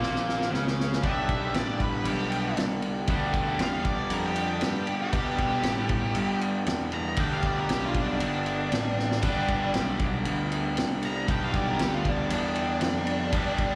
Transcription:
0.01 picked electric bass A#1, overdriven electric guitar A#2 A#3, snare
0.15 snare
0.29 snare
0.41 snare
0.52 picked electric bass C#2, overdriven electric guitar C#3 C#4, snare
0.67 snare
0.80 snare
0.92 snare
1.03 picked electric bass B1, overdriven electric guitar G3 B3 D4 G4, lead electric guitar E5, kick, ride
1.29 kick, ride
1.54 picked electric bass A1, lead electric guitar D5, snare, ride
1.80 lead electric guitar B4, kick, ride
2.05 picked electric bass B1, lead electric guitar G4, ride
2.32 ride
2.57 picked electric bass C2, snare, ride
2.82 ride
3.07 picked electric bass D2, overdriven electric guitar G3 B3 D4 G4, kick, ride
3.33 kick, ride
3.59 picked electric bass E2, lead electric guitar F5, snare, ride
3.85 lead electric guitar D5, muted picked electric bass stroke, kick, ride
4.10 picked electric bass F2, lead electric guitar A#4, ride
4.26 lead electric guitar G4
4.36 ride
4.61 picked electric bass G2, snare, ride
4.87 muted picked electric bass stroke, ride
5.02 lead electric guitar G4
5.12 picked electric bass B2, overdriven electric guitar G3 B3 D4 G4, kick, ride
5.38 lead electric guitar G4, kick, ride
5.63 picked electric bass A2, snare, ride
5.89 kick, ride
6.15 picked electric bass G2, ride
6.41 ride
6.66 picked electric bass E2, snare, ride
6.92 lead electric guitar A#5, ride
7.16 picked electric bass D2, overdriven electric guitar G3 B3 D4 G4, lead electric guitar G5, kick, ride
7.33 lead electric guitar F5
7.42 lead electric guitar D5, kick, ride
7.61 lead electric guitar A#4
7.69 picked electric bass B1, snare, ride
7.73 lead electric guitar G4
7.85 lead electric guitar F4
7.94 kick, ride
8.00 lead electric guitar D4
8.20 picked electric bass G1, lead electric guitar D4, ride
8.46 ride
8.72 picked electric bass A1, snare, ride
8.99 snare
9.11 snare
9.22 picked electric bass G1, overdriven electric guitar G3 B3 D4 G4, kick, ride, crash
9.48 kick, ride
9.74 picked electric bass B1, snare, ride
9.99 kick, ride
10.25 picked electric bass D2, ride
10.52 ride
10.77 picked electric bass C2, snare, ride
11.03 lead electric guitar A#5, ride
11.28 picked electric bass B1, overdriven electric guitar G3 B3 D4 G4, lead electric guitar G5, kick, ride
11.44 lead electric guitar F5
11.54 lead electric guitar D5, kick, ride
11.70 lead electric guitar A#4
11.79 picked electric bass D2, lead electric guitar G4, snare, ride
11.95 lead electric guitar F4
12.05 lead electric guitar D4, kick, ride
12.30 picked electric bass E2, lead electric guitar D4, ride
12.55 ride
12.81 picked electric bass F2, snare, ride
13.07 ride
13.32 picked electric bass G2, overdriven electric guitar G3 B3 D4 G4, kick, ride
13.58 muted picked electric bass stroke, kick, ride

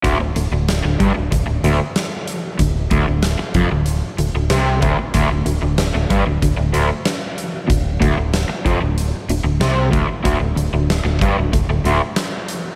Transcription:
0.03 fingered electric bass D1, overdriven electric guitar D2, kick, closed hi-hat
0.20 fingered electric bass D1, overdriven electric guitar D2
0.36 fingered electric bass D1, overdriven electric guitar D2, closed hi-hat
0.51 fingered electric bass D1, overdriven electric guitar D2
0.69 snare, closed hi-hat
0.84 fingered electric bass D1, overdriven electric guitar D2
1.00 fingered electric bass G1, overdriven electric guitar G2, kick, closed hi-hat
1.15 fingered electric bass D1, overdriven electric guitar D2
1.31 fingered electric bass D1, overdriven electric guitar D2, kick, closed hi-hat
1.46 fingered electric bass D1, overdriven electric guitar D2
1.63 fingered electric bass D1, overdriven electric guitar D2, closed hi-hat
1.96 snare, closed hi-hat
2.28 closed hi-hat
2.59 fingered electric bass D1, overdriven electric guitar D2, kick, closed hi-hat
2.91 fingered electric bass D1, overdriven electric guitar D2, kick, closed hi-hat
3.08 fingered electric bass D1, overdriven electric guitar D2
3.23 snare, closed hi-hat
3.39 muted overdriven electric guitar stroke, muted fingered electric bass stroke
3.54 fingered electric bass F1, overdriven electric guitar F2, kick, closed hi-hat
3.71 fingered electric bass D1, overdriven electric guitar D2
3.86 closed hi-hat
4.18 fingered electric bass D1, overdriven electric guitar D2, closed hi-hat
4.34 fingered electric bass D1, overdriven electric guitar D2
4.50 fingered electric bass C2, overdriven electric guitar C3, snare, closed hi-hat
4.81 fingered electric bass D1, overdriven electric guitar D2, kick, closed hi-hat
4.99 muted overdriven electric guitar stroke, muted fingered electric bass stroke
5.14 fingered electric bass D1, overdriven electric guitar D2, kick, closed hi-hat
5.31 fingered electric bass D1, overdriven electric guitar D2
5.46 fingered electric bass D1, overdriven electric guitar D2, closed hi-hat
5.62 fingered electric bass D1, overdriven electric guitar D2
5.78 snare, closed hi-hat
5.95 fingered electric bass D1, overdriven electric guitar D2
6.10 fingered electric bass G1, overdriven electric guitar G2, kick, closed hi-hat
6.26 fingered electric bass D1, overdriven electric guitar D2
6.42 fingered electric bass D1, overdriven electric guitar D2, kick, closed hi-hat
6.57 fingered electric bass D1, overdriven electric guitar D2
6.73 fingered electric bass D1, overdriven electric guitar D2, closed hi-hat
7.05 snare, closed hi-hat
7.38 closed hi-hat
7.68 fingered electric bass D1, overdriven electric guitar D2, kick, closed hi-hat
8.01 fingered electric bass D1, overdriven electric guitar D2, kick, closed hi-hat
8.17 fingered electric bass D1, overdriven electric guitar D2
8.34 snare, closed hi-hat
8.49 muted fingered electric bass stroke, muted overdriven electric guitar stroke
8.66 fingered electric bass F1, overdriven electric guitar F2, kick, closed hi-hat
8.81 fingered electric bass D1, overdriven electric guitar D2
8.98 closed hi-hat
9.29 fingered electric bass D1, overdriven electric guitar D2, closed hi-hat
9.44 fingered electric bass D1, overdriven electric guitar D2
9.61 fingered electric bass C2, overdriven electric guitar C3, snare, closed hi-hat
9.91 fingered electric bass D1, overdriven electric guitar D2, kick, closed hi-hat
10.09 muted overdriven electric guitar stroke, muted fingered electric bass stroke
10.24 fingered electric bass D1, overdriven electric guitar D2, kick, closed hi-hat
10.40 fingered electric bass D1, overdriven electric guitar D2
10.56 fingered electric bass D1, overdriven electric guitar D2, closed hi-hat
10.73 fingered electric bass D1, overdriven electric guitar D2
10.90 snare, closed hi-hat
11.04 fingered electric bass D1, overdriven electric guitar D2
11.21 fingered electric bass G1, overdriven electric guitar G2, kick, closed hi-hat
11.37 fingered electric bass D1, overdriven electric guitar D2
11.53 fingered electric bass D1, overdriven electric guitar D2, kick, closed hi-hat
11.68 fingered electric bass D1, overdriven electric guitar D2
11.84 fingered electric bass D1, overdriven electric guitar D2, closed hi-hat
12.16 snare, closed hi-hat
12.48 closed hi-hat

